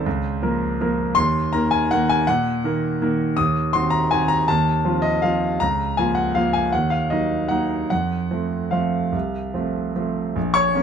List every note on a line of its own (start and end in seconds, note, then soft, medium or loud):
0.00 0.41 C5 medium
0.06 0.41 C#2 medium
0.42 0.76 F3 soft
0.42 0.76 A#3 soft
0.42 0.76 A#4 soft
0.81 1.14 F3 soft
0.81 1.14 A#3 soft
0.81 1.14 A#4 soft
1.15 1.52 D#2 medium
1.15 1.52 C6 loud
1.53 1.87 D#3 soft
1.53 1.87 A#3 soft
1.53 1.87 A#4 soft
1.53 1.71 A#5 medium
1.71 1.90 G#5 medium
1.91 2.24 D#3 soft
1.91 2.25 A#3 soft
1.91 2.25 A#4 medium
1.91 2.10 F#5 medium
2.09 2.28 G#5 medium
2.27 2.63 A#2 medium
2.27 3.38 F#5 medium
2.64 2.98 D#3 soft
2.64 2.98 A#3 soft
2.64 2.98 A#4 soft
3.02 3.34 D#3 soft
3.02 3.34 A#3 soft
3.02 3.35 A#4 soft
3.37 3.73 D#2 medium
3.37 3.73 D#6 loud
3.73 4.08 D#3 soft
3.73 4.08 C4 soft
3.73 4.08 F#4 soft
3.73 3.92 C6 medium
3.90 4.10 A#5 medium
4.11 4.45 D#3 soft
4.11 4.45 C4 soft
4.11 4.45 F#4 soft
4.11 4.30 G#5 medium
4.28 4.47 A#5 loud
4.48 4.84 D#2 medium
4.48 5.04 A5 medium
4.85 5.20 F3 soft
4.85 5.20 C4 soft
4.85 5.20 F4 soft
5.02 5.23 D#5 medium
5.22 5.57 F3 soft
5.22 5.57 C4 soft
5.22 5.57 F4 soft
5.22 5.60 F5 medium
5.60 5.97 C#2 medium
5.60 5.97 A#5 medium
5.97 6.32 F3 soft
5.97 6.32 A#3 soft
5.97 6.32 F4 soft
5.97 6.16 G#5 medium
6.15 6.34 F#5 medium
6.35 6.69 F3 soft
6.35 6.69 A#3 soft
6.35 6.70 F4 soft
6.35 6.54 F5 medium
6.53 6.72 G#5 medium
6.72 7.10 D#2 soft
6.72 6.91 F#5 medium
6.90 7.10 F5 medium
7.10 7.47 F#3 soft
7.10 7.47 A#3 soft
7.10 7.47 D#4 soft
7.10 7.50 D#5 medium
7.49 7.87 F#3 soft
7.49 7.87 A#3 soft
7.49 7.87 D#4 soft
7.49 7.89 F#5 medium
7.90 8.30 F2 soft
7.90 8.73 F#5 medium
8.31 8.69 F3 soft
8.31 8.69 A3 soft
8.31 8.69 C4 soft
8.71 9.09 F3 soft
8.71 9.09 A3 soft
8.71 9.09 C4 soft
8.71 9.94 F5 medium
9.12 9.52 C2 soft
9.54 9.92 F3 soft
9.54 9.92 A3 soft
9.54 9.92 C4 soft
9.96 10.32 F3 soft
9.96 10.32 A3 soft
9.96 10.32 C4 soft
10.36 10.74 A#1 medium
10.54 10.83 C#5 medium
10.54 10.83 C#6 loud
10.75 10.83 A#3 soft
10.75 10.83 C#4 medium